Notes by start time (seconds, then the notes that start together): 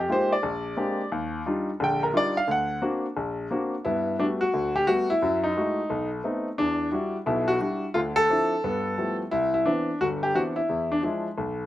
0.09 G#3 A#3 D#4 F4 G4 C5
0.32 D5
0.43 A#1
0.77 G#3 A#3 C4 D4 G4
1.12 D#2
1.46 G3 D4 D#4 F4
1.80 A#1 D3 G5
2.03 A#4
2.13 G3 D4 D#4 F4 D5
2.37 F5
2.48 D2 F#5
2.82 A#3 C4 D4 F#4
3.17 A#1
3.51 A#3 C4 D4 F#4
3.85 G2 B3 E4
4.19 G3 A3 B3 D4 F#4
4.41 F#4
4.54 D2
4.76 G4
4.87 G3 A3 B3 F#4
5.10 E4
5.22 F#2 F#3
5.44 D#4
5.57 G#3 A3 E4 F#4
5.90 B1
6.24 A3 B3 C4 D#4
6.58 E2 D4
6.92 G3 D4 E4 F#4
7.26 B1 B2 E4
7.48 F#4
7.60 G3 D4 E4
7.94 D2 D3 F4
8.16 A4
8.30 F3 C4 D4 E4
8.64 G2 B3
8.98 F3 G3 A3 B3 E4
9.31 C2 E4
9.54 E4
9.66 E3 B3 C4 D4
10.01 G1 F#4
10.23 G4
10.34 E3 B3 C4 D4 F#4
10.56 E4
10.69 E2
10.92 D4
11.03 F3 G#3 D4 E4
11.38 B1